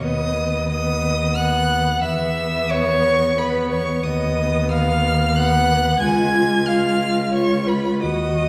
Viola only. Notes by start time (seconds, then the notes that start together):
0.04 B3
0.72 B3
1.38 B3
2.05 B3
3.38 B3
4.06 B3
5.36 B3
6.01 F4
6.69 F4
7.34 F4
8.03 F#4